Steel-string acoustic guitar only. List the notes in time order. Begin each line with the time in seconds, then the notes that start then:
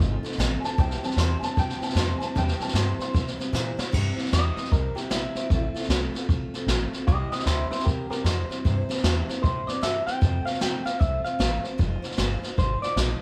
0.00 A3 C4 F4 A4
0.23 C4 F4 A4
0.38 F3 A3 C4 F4 A4
0.62 C4 F4 A4
0.77 C3 E3 G3 C4 E4 C5
1.02 G3 C4 E4 C5
1.17 C3 E3 G3 C4 E4 C5
1.41 G3 C4 E4 C5
1.56 G3 C4 E4 C5
1.80 G3 C4 E4 C5
1.95 C3 E3 G3 C4 E4 C5
2.20 G3 C4 E4 C5
2.35 C3 E3 G3 C4 E4 C5
2.58 G3 C4 E4 C5
2.74 C3 E3 G3 C4 E4 C5
2.99 G3 C4 E4 C5
3.14 G3 C4 E4 C5
3.38 G3 C4 E4 C5
3.53 C3 E3 G3 C4 E4 C5
3.77 G3 C4 E4 C5
3.92 C3 E3 G3 C4 E4 C5
4.15 G3 C4 E4 C5
4.31 C3 E3 G3 C4 E4 C5
4.56 G3 C4 E4 C5
4.71 G3 C4 E4 C5
4.95 G3 C4 E4 C5
5.10 C3 E3 G3 C4 E4 C5
5.35 G3 C4 E4 C5
5.50 F3 A3 C4 F4 A4
5.74 C4 F4 A4
5.90 F3 A3 C4 F4 A4
6.14 C4 F4 A4
6.29 A3 C4 F4 A4
6.54 C4 F4 A4
6.69 F3 A3 C4 F4 A4
6.93 C4 F4 A4
7.08 C3 E3 G3 C4 E4 C5
7.32 G3 C4 E4 C5
7.47 C3 E3 G3 E4 C5
7.71 G3 C4 E4 C5
7.85 G3 C4 E4 C5
8.10 G3 C4 E4 C5
8.24 C3 E3 G3 C4 E4 C5
8.49 G3 C4 E4 C5
8.65 C3 E3 G3 C4 E4 C5
8.89 G3 C4 E4 C5
9.04 C3 E3 G3 C4 E4 C5
9.29 G3 C4 E4 C5
9.44 C4 E4 C5
9.67 G3 C4 E4 C5
9.81 C3 E3 G3 C4 E4 C5
10.07 G3 C4 E4 C5
10.21 F3 A3 C4 F4 C5
10.45 C4 F4 C5
10.60 F3 A3 C4 F4 C5
10.85 C4 F4 C5
10.99 A3 C4 F4 C5
11.24 C4 F4 C5
11.39 F3 A3 C4 F4 C5
11.64 C4 F4 C5
11.78 F3 G#3 D#4 F4 C5
12.02 D#4 F4 C5
12.17 F3 G#3 D#4 F4 C5
12.42 D#4 F4 C5
12.57 G#3 D#4 F4 C5
12.82 D#4 F4 C5
12.97 F3 G#3 D#4 F4 C5